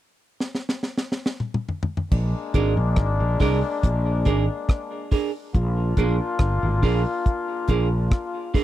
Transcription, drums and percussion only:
0.40 snare
0.55 snare
0.69 snare
0.83 snare
0.98 snare
1.12 snare
1.26 snare
1.40 mid tom
1.54 mid tom
1.69 floor tom
1.83 floor tom
1.97 floor tom
2.11 kick, crash
2.54 kick, closed hi-hat
2.96 kick, cross-stick
3.40 kick, cross-stick, open hi-hat
3.83 kick, hi-hat pedal
4.25 kick, closed hi-hat
4.69 kick, cross-stick
5.11 kick, open hi-hat
5.54 kick, hi-hat pedal
5.97 kick, closed hi-hat
6.39 kick, cross-stick
6.83 kick, open hi-hat
7.26 kick, hi-hat pedal
7.68 kick, closed hi-hat
8.11 kick, cross-stick
8.54 kick, open hi-hat

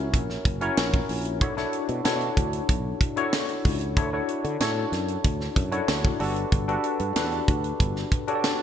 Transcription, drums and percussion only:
0.13 kick, closed hi-hat
0.30 snare
0.45 kick, closed hi-hat
0.61 closed hi-hat
0.77 snare, closed hi-hat
0.93 kick, closed hi-hat
1.09 open hi-hat
1.25 closed hi-hat
1.41 kick, closed hi-hat
1.57 snare, closed hi-hat
1.73 closed hi-hat
1.89 closed hi-hat
2.05 snare, closed hi-hat
2.21 closed hi-hat
2.37 kick, closed hi-hat
2.53 closed hi-hat
2.69 kick, closed hi-hat
3.01 kick, closed hi-hat
3.17 closed hi-hat
3.33 snare, closed hi-hat
3.49 closed hi-hat
3.65 kick, open hi-hat
3.81 closed hi-hat
3.97 kick, closed hi-hat
4.28 closed hi-hat
4.44 closed hi-hat
4.60 snare, closed hi-hat
4.93 snare, closed hi-hat
5.08 closed hi-hat
5.24 kick, closed hi-hat
5.41 snare
5.56 kick, closed hi-hat
5.72 closed hi-hat
5.88 snare, closed hi-hat
6.05 kick
6.20 open hi-hat
6.36 closed hi-hat
6.52 kick, closed hi-hat
6.69 closed hi-hat
6.84 closed hi-hat
6.99 closed hi-hat
7.16 snare, closed hi-hat
7.32 closed hi-hat
7.48 kick, closed hi-hat
7.64 closed hi-hat
7.80 kick, closed hi-hat
7.96 snare
8.12 kick, closed hi-hat
8.28 closed hi-hat
8.44 snare, closed hi-hat

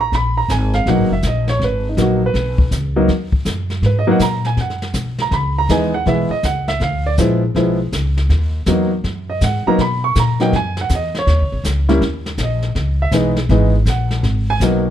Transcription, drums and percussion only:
0.12 brush sweep, kick, snare
0.49 kick, snare, hi-hat pedal
0.73 snare
0.86 brush sweep, kick, snare
1.23 kick, snare, hi-hat pedal
1.48 snare
1.60 brush sweep, kick, snare
1.97 kick, snare, hi-hat pedal
2.34 brush sweep, kick, snare
2.58 kick
2.71 kick, snare, hi-hat pedal
3.08 brush sweep, kick, snare
3.32 kick
3.45 kick, snare, hi-hat pedal
3.70 snare
3.83 brush sweep, kick, snare
4.20 kick, snare, hi-hat pedal
4.45 snare
4.57 brush sweep, kick, snare
4.70 snare
4.82 snare
4.94 kick, snare, hi-hat pedal
5.18 snare
5.31 brush sweep, kick, snare
5.69 kick, snare, hi-hat pedal
6.06 brush sweep, kick, snare
6.43 kick, snare, hi-hat pedal
6.68 snare
6.81 brush sweep, kick, snare
7.18 kick, snare, hi-hat pedal
7.55 brush sweep, kick, snare
7.93 kick, snare, hi-hat pedal
8.17 snare
8.30 brush sweep, kick, snare
8.66 kick, snare, hi-hat pedal
9.04 brush sweep, kick, snare
9.41 kick, snare, hi-hat pedal
9.79 brush sweep, kick, snare
10.15 kick, snare, hi-hat pedal
10.40 snare
10.53 brush sweep, kick, snare
10.77 snare
10.89 kick, snare, hi-hat pedal
11.15 snare
11.27 brush sweep, kick, snare
11.64 kick, snare, hi-hat pedal
11.89 snare
12.01 brush sweep, kick, snare
12.26 snare
12.38 kick, snare, hi-hat pedal
12.62 snare
12.75 brush sweep, kick, snare
13.12 kick, snare, hi-hat pedal
13.37 snare
13.49 brush sweep, kick, snare
13.86 kick, snare, hi-hat pedal
14.11 snare
14.23 brush sweep, kick, snare
14.60 kick, snare, hi-hat pedal

